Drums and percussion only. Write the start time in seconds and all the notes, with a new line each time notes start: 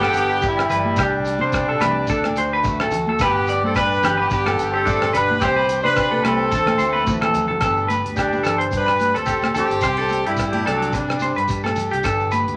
0.01 cross-stick, high conga, low agogo
0.13 closed hi-hat, shekere
0.41 kick, shekere
0.57 cross-stick, low agogo
0.69 closed hi-hat, low conga, shekere
0.85 high conga
0.96 kick, cross-stick, low agogo, shekere
1.25 closed hi-hat, shekere
1.39 high conga
1.52 kick, cross-stick, low agogo, shekere
1.81 cross-stick, closed hi-hat, high conga, low conga, low agogo, shekere
2.07 kick, shekere
2.24 cross-stick, high conga, low agogo
2.36 closed hi-hat, shekere
2.64 kick, shekere
2.80 cross-stick, low agogo
2.91 closed hi-hat, low conga, shekere
3.07 high conga
3.19 kick, cross-stick, low agogo, shekere
3.47 closed hi-hat, shekere
3.63 high conga
3.75 kick, cross-stick, low agogo, shekere
4.03 cross-stick, closed hi-hat, high conga, low conga, low agogo, shekere
4.30 kick, shekere
4.46 cross-stick, high conga, low agogo
4.59 closed hi-hat, shekere
4.87 kick, shekere
5.01 cross-stick, low agogo
5.14 closed hi-hat, low conga, shekere
5.30 high conga
5.41 kick, cross-stick, low agogo, shekere
5.69 closed hi-hat, shekere
5.85 high conga
5.96 kick, cross-stick, low agogo, shekere
6.12 high conga
6.25 cross-stick, closed hi-hat, high conga, low agogo
6.52 kick, low conga, shekere
6.67 cross-stick, high conga, low agogo
6.79 closed hi-hat, shekere
6.95 high conga
7.07 kick, high conga, shekere
7.22 cross-stick, high conga, low agogo
7.34 closed hi-hat, low conga, shekere
7.51 low conga
7.61 kick, cross-stick, closed hi-hat, low agogo, shekere
7.77 shekere
7.90 closed hi-hat, high conga, shekere
8.06 closed hi-hat
8.16 kick, cross-stick, closed hi-hat, low agogo, shekere
8.33 high conga, shekere
8.44 cross-stick, closed hi-hat, low conga, low agogo, shekere
8.61 closed hi-hat
8.71 kick, closed hi-hat, shekere
8.88 cross-stick, low agogo
8.99 closed hi-hat, high conga, shekere
9.14 closed hi-hat, shekere
9.26 kick, closed hi-hat, shekere
9.42 cross-stick, high conga, low agogo, shekere
9.55 closed hi-hat, low conga, shekere
9.69 closed hi-hat, shekere
9.81 kick, cross-stick, closed hi-hat, low agogo, shekere
9.97 shekere
10.09 closed hi-hat, high conga, shekere
10.27 closed hi-hat
10.37 kick, cross-stick, closed hi-hat, low agogo, shekere
10.53 high conga, shekere
10.67 cross-stick, closed hi-hat, low agogo
10.82 closed hi-hat
10.92 kick, closed hi-hat, shekere
11.09 cross-stick, low agogo
11.19 closed hi-hat, high conga, shekere
11.35 closed hi-hat, shekere
11.48 kick, closed hi-hat, shekere
11.63 cross-stick, high conga, low agogo, shekere
11.76 closed hi-hat, low conga, shekere
11.90 closed hi-hat, shekere
12.03 kick, cross-stick, closed hi-hat, low agogo, shekere
12.19 shekere
12.31 closed hi-hat, high conga, shekere
12.48 closed hi-hat